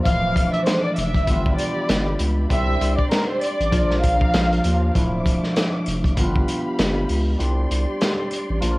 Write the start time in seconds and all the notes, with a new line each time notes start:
Already playing: C4
0.04 D1 E3 F3 A3 D4 D5 F5 D6, kick, closed hi-hat, sleigh bells
0.36 kick, closed hi-hat, sleigh bells
0.53 E5, closed hi-hat
0.66 C5, snare, closed hi-hat, sleigh bells
0.84 D5
0.96 F1 E5, closed hi-hat, sleigh bells
1.14 kick, closed hi-hat
1.27 G1 G3 B3 D4 F4 G4 B5, kick, closed hi-hat, sleigh bells
1.46 kick
1.58 D5, closed hi-hat, sleigh bells
1.89 G1, snare, closed hi-hat, sleigh bells
2.19 C#2, closed hi-hat, sleigh bells
2.49 C2 G3 C4 D4 G4 D5 E5 C6, kick, closed hi-hat, sleigh bells
2.81 C2, closed hi-hat, sleigh bells
2.97 D5, kick
3.11 A#4, snare, closed hi-hat, sleigh bells
3.29 C5
3.41 D5, closed hi-hat, sleigh bells
3.60 A1, closed hi-hat
3.70 A#1 F3 A#3 D4 F4 A#5, kick, closed hi-hat, sleigh bells
3.91 snare
4.02 F5, kick, closed hi-hat, sleigh bells
4.21 kick
4.34 A#1, snare, closed hi-hat, sleigh bells
4.53 closed hi-hat
4.64 D#2 F3 A#3 D4 F4, closed hi-hat, sleigh bells
4.94 D1 F3 A3 D4 E4 E5 D6, kick, closed hi-hat, sleigh bells
5.26 kick, closed hi-hat, sleigh bells
5.44 snare
5.56 snare, closed hi-hat, sleigh bells
5.86 F1, closed hi-hat, sleigh bells
6.04 kick, closed hi-hat
6.17 G1 G3 B3 D4 F4 G4 F5 B5, kick, closed hi-hat, sleigh bells
6.36 kick
6.48 closed hi-hat, sleigh bells
6.79 G1, snare, closed hi-hat, sleigh bells
7.09 C#2, open hi-hat, sleigh bells
7.39 C2 G3 C4 D4 G4 D5 C6, closed hi-hat, sleigh bells
7.71 C2, closed hi-hat, sleigh bells
8.01 snare, closed hi-hat, sleigh bells
8.31 closed hi-hat, sleigh bells
8.50 A1
8.60 A#1 F3 A#3 D4 F4 A#5, closed hi-hat, sleigh bells